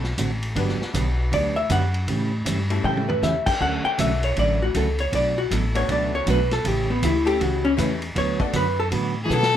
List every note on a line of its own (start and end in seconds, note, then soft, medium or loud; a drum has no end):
0.00 0.16 B1 loud
0.00 snare soft
0.18 0.55 A1 loud
0.18 0.29 D3 medium
0.18 0.30 A3 medium
0.18 0.30 C4 medium
0.18 0.30 F#4 medium
0.18 0.30 A4 medium
0.18 kick soft
0.18 hi-hat pedal medium
0.18 ride medium
0.43 ride medium
0.55 0.78 G1 loud
0.55 0.77 D3 medium
0.55 0.78 F#3 medium
0.55 1.62 B3 medium
0.55 0.78 B3 medium
0.55 1.62 D4 medium
0.55 0.78 D4 medium
0.55 1.62 F#4 medium
0.55 1.62 G4 medium
0.55 0.78 G4 medium
0.55 1.62 B4 medium
0.55 kick soft
0.55 ride medium
0.69 snare soft
0.80 muted upright bass stroke soft
0.80 snare medium
0.94 1.31 B1 loud
0.94 1.05 D3 medium
0.94 1.06 F#3 medium
0.94 1.05 B3 medium
0.94 1.06 D4 medium
0.94 1.06 G4 medium
0.94 kick soft
0.94 hi-hat pedal medium
0.94 ride medium
1.31 1.69 D2 loud
1.31 1.53 D3 medium
1.31 1.54 F#3 medium
1.31 1.54 B3 medium
1.31 1.54 D4 medium
1.31 1.54 G4 medium
1.31 1.56 D5 medium
1.31 kick soft
1.31 ride medium
1.56 1.70 E5 loud
1.69 2.07 F#2 loud
1.69 1.81 D3 medium
1.69 1.81 F#3 medium
1.69 1.81 B3 medium
1.69 1.82 D4 medium
1.69 1.82 G4 medium
1.69 2.06 F#5 medium
1.69 kick soft
1.69 hi-hat pedal medium
1.69 ride medium
1.94 ride medium
2.08 2.45 A2 loud
2.08 2.30 C#3 medium
2.08 2.30 E3 medium
2.08 2.30 A3 medium
2.08 2.30 C#4 medium
2.08 2.30 G4 medium
2.08 kick soft
2.08 ride medium
2.45 2.83 G2 loud
2.45 2.57 C#3 medium
2.45 2.57 E3 medium
2.45 2.57 A3 medium
2.45 2.57 C#4 medium
2.45 2.58 G4 medium
2.45 kick soft
2.45 hi-hat pedal medium
2.45 ride medium
2.70 3.19 A3 medium
2.70 3.20 C#4 medium
2.70 3.20 E4 medium
2.70 3.20 G4 medium
2.70 3.20 A4 medium
2.70 ride medium
2.84 3.21 A2 medium
2.84 3.06 C#3 medium
2.84 3.06 E3 medium
2.84 3.06 A3 medium
2.84 3.06 C#4 medium
2.84 3.06 G4 medium
2.84 3.08 G5 loud
2.84 high tom medium
2.97 high tom medium
3.09 3.22 B4 medium
3.09 floor tom medium
3.22 3.45 E2 medium
3.22 3.34 C#3 medium
3.22 3.34 E3 medium
3.22 3.34 A3 medium
3.22 3.34 C#4 medium
3.22 3.35 G4 medium
3.22 3.46 E5 medium
3.22 snare medium
3.22 hi-hat pedal medium
3.46 3.60 G5 loud
3.46 kick medium
3.46 crash medium
3.60 3.83 D2 medium
3.60 3.82 D3 medium
3.60 3.82 F#3 medium
3.60 4.66 A3 medium
3.60 3.82 A3 medium
3.60 4.66 C#4 medium
3.60 3.83 C#4 medium
3.60 4.66 D4 medium
3.60 4.66 F#4 medium
3.60 3.82 F#4 medium
3.60 4.66 A4 medium
3.60 3.84 F#5 loud
3.60 kick soft
3.84 3.98 G5 loud
3.84 muted upright bass stroke soft
3.98 4.36 B1 loud
3.98 4.10 D3 medium
3.98 4.10 F#3 medium
3.98 4.10 A3 medium
3.98 4.10 C#4 medium
3.98 4.10 F#4 medium
3.98 4.23 E5 medium
3.98 kick soft
3.98 hi-hat pedal medium
3.98 ride medium
4.23 4.37 C#5 medium
4.23 ride medium
4.36 4.73 A1 medium
4.36 4.58 D3 medium
4.36 4.58 F#3 medium
4.36 4.59 A3 medium
4.36 4.59 C#4 medium
4.36 4.59 F#4 medium
4.36 4.61 D5 loud
4.36 kick soft
4.36 ride medium
4.62 4.75 F#4 medium
4.74 5.11 C#2 medium
4.74 4.86 D3 medium
4.74 4.86 F#3 medium
4.74 4.86 A3 medium
4.74 4.86 C#4 medium
4.74 4.87 F#4 medium
4.74 4.99 A4 medium
4.74 kick soft
4.74 hi-hat pedal medium
4.74 ride medium
4.99 5.13 C#5 loud
4.99 ride medium
5.12 5.49 B1 medium
5.12 5.34 B2 medium
5.12 5.34 F#3 medium
5.12 5.34 A3 medium
5.12 5.34 D4 medium
5.12 5.35 F#4 medium
5.12 5.37 D5 loud
5.12 kick soft
5.12 ride medium
5.38 5.53 F#4 medium
5.51 5.88 A1 loud
5.51 5.62 B2 medium
5.51 5.62 F#3 medium
5.51 5.63 A3 medium
5.51 5.63 D4 medium
5.51 5.63 F#4 medium
5.51 5.75 A4 medium
5.51 kick soft
5.51 hi-hat pedal medium
5.51 ride medium
5.75 6.24 A3 medium
5.75 6.24 B3 medium
5.75 6.24 D4 medium
5.75 6.24 F#4 medium
5.75 6.24 A4 medium
5.75 5.89 C#5 medium
5.75 ride medium
5.89 6.26 C#2 medium
5.89 6.10 B2 medium
5.89 6.10 F#3 medium
5.89 6.10 A3 medium
5.89 6.11 D4 medium
5.89 6.11 F#4 medium
5.89 6.14 D5 medium
5.89 kick soft
5.89 ride medium
6.15 6.27 C#5 medium
6.27 6.63 B1 loud
6.27 6.38 B2 medium
6.27 6.38 F#3 medium
6.27 6.39 A3 medium
6.27 6.39 D4 medium
6.27 6.39 F#4 loud
6.27 6.52 B4 loud
6.27 kick soft
6.27 hi-hat pedal soft
6.27 ride medium
6.51 6.68 A4 loud
6.51 snare soft
6.51 ride medium
6.64 7.01 A1 medium
6.64 6.86 C#3 medium
6.64 6.87 E3 medium
6.64 6.87 A3 medium
6.64 6.87 C#4 medium
6.64 6.87 G4 medium
6.64 6.90 G4 medium
6.64 kick soft
6.64 ride medium
6.90 7.03 B3 medium
7.02 7.39 D2 loud
7.02 7.14 C#3 medium
7.02 7.14 E3 medium
7.02 7.14 A3 medium
7.02 7.14 C#4 medium
7.02 7.27 E4 medium
7.02 7.14 G4 medium
7.02 kick soft
7.02 hi-hat pedal medium
7.02 ride medium
7.25 7.38 A3 medium
7.25 7.39 C#4 medium
7.25 7.39 E4 medium
7.25 7.39 G4 medium
7.25 7.42 G4 loud
7.25 7.39 A4 medium
7.25 ride medium
7.40 7.77 C#2 medium
7.40 7.62 C#3 medium
7.40 7.62 E3 medium
7.40 7.62 A3 medium
7.40 7.62 C#4 medium
7.40 7.65 F#4 medium
7.40 7.62 G4 medium
7.40 kick soft
7.40 ride medium
7.65 7.73 C#4 loud
7.77 8.15 E2 loud
7.77 7.89 C#3 medium
7.77 7.89 E3 medium
7.77 8.00 A3 medium
7.77 7.90 A3 medium
7.77 8.00 C#4 medium
7.77 7.90 C#4 medium
7.77 8.00 E4 medium
7.77 8.00 G4 medium
7.77 7.90 G4 medium
7.77 8.00 B4 medium
7.77 kick soft
7.77 hi-hat pedal medium
7.77 ride medium
8.02 ride medium
8.15 8.53 D2 loud
8.15 8.37 D3 medium
8.15 8.38 F#3 medium
8.15 8.38 B3 medium
8.15 8.38 F#4 medium
8.15 8.38 B4 medium
8.15 8.41 C#5 medium
8.15 kick soft
8.15 ride medium
8.39 8.53 A3 medium
8.39 8.53 B3 medium
8.39 8.53 D4 medium
8.39 8.53 F#4 medium
8.39 8.53 A4 medium
8.39 8.54 D5 loud
8.39 kick medium
8.53 8.91 F#2 loud
8.53 8.65 D3 medium
8.53 8.65 F#3 medium
8.53 8.66 B3 medium
8.53 8.66 F#4 medium
8.53 8.66 B4 medium
8.53 8.79 B4 medium
8.53 kick soft
8.53 hi-hat pedal medium
8.53 ride medium
8.80 8.88 A4 loud
8.90 9.29 A2 medium
8.90 9.13 D3 medium
8.90 9.13 F#3 medium
8.90 9.14 B3 medium
8.90 9.14 F#4 medium
8.90 9.14 B4 medium
8.90 kick soft
8.90 ride medium
9.24 9.32 E3 medium
9.24 9.32 G#4 medium
9.30 9.57 B2 loud
9.30 9.42 D3 medium
9.30 9.42 F#3 medium
9.30 9.57 F#3 medium
9.30 9.42 B3 medium
9.30 9.42 F#4 medium
9.30 9.57 A4 loud
9.30 9.42 B4 loud
9.30 hi-hat pedal medium
9.43 snare medium